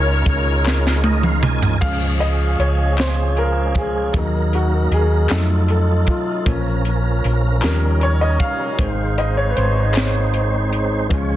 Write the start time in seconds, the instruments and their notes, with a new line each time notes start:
Already playing: fingered electric bass C#2, upright piano C#3 C#4 D#4 F4 G#4 A#4, tonewheel organ G#3 C#4 D#4 F4 A#4, string section F4 A#4 C#5
0.26 fingered electric bass C#2, kick, closed hi-hat
0.65 snare, clap
0.87 snare
1.04 tonewheel organ D#5, high tom
1.23 tonewheel organ F5, mid tom
1.42 tonewheel organ G#5, mid tom
1.62 floor tom
1.81 fingered electric bass C#2, tonewheel organ D#3 G#3 C#4 G#4, upright piano F3 G#3 C#4 F5, french horn section C#4 F4 G#4 F5, kick, crash
1.87 tonewheel organ F3
2.20 upright piano D#5, closed hi-hat
2.59 fingered electric bass C#2, upright piano C#5, closed hi-hat
2.98 upright piano C5, snare, clap, closed hi-hat
3.37 upright piano A#4, closed hi-hat
3.75 upright piano G#4, kick, closed hi-hat
4.12 fingered electric bass D#2, tonewheel organ F#3 A#3 D#4 A4, upright piano F#3 A#3, french horn section D#4 A#4 D#5, kick, closed hi-hat
4.16 upright piano D#4, tonewheel organ A#4
4.53 upright piano F#4, closed hi-hat
4.91 fingered electric bass D#2, upright piano G#4, closed hi-hat
5.29 fingered electric bass F2, upright piano F#3 A3 D#4 A4, tonewheel organ F#3 D#4 F4 A4, french horn section F4 A4 D#5, snare, clap, closed hi-hat
5.68 upright piano A4, closed hi-hat
6.07 upright piano F4, kick, closed hi-hat
6.45 fingered electric bass A#1, upright piano F3 A#3 C#4, tonewheel organ F3 A#3 C#4 A4, french horn section C#4 A#4 C#5, kick, closed hi-hat
6.53 tonewheel organ A#4
6.85 closed hi-hat
7.24 fingered electric bass A#1, closed hi-hat
7.62 upright piano F3 G3 C#4 A#4, tonewheel organ G3 C#4 D#4 G#4, french horn section D#4 G4, snare, clap, closed hi-hat
7.68 tonewheel organ A#4
8.01 upright piano C#5, closed hi-hat
8.21 upright piano D#5
8.40 upright piano F5, kick, closed hi-hat
8.77 fingered electric bass G#1, upright piano D#3 G#3 C4, tonewheel organ G#3 C4 D#4 C5, french horn section G#4 C5 D#5, kick, closed hi-hat
9.18 upright piano D#5, closed hi-hat
9.37 upright piano C#5
9.49 upright piano B4
9.57 fingered electric bass G#1, upright piano C5, closed hi-hat
9.94 snare, clap, closed hi-hat
10.34 closed hi-hat
10.73 closed hi-hat
11.09 fingered electric bass C#2, upright piano F3 G#3 C#4, tonewheel organ G#3 C#4 F4 C5, french horn section F4 C#5 F5, kick, closed hi-hat
11.18 tonewheel organ C#5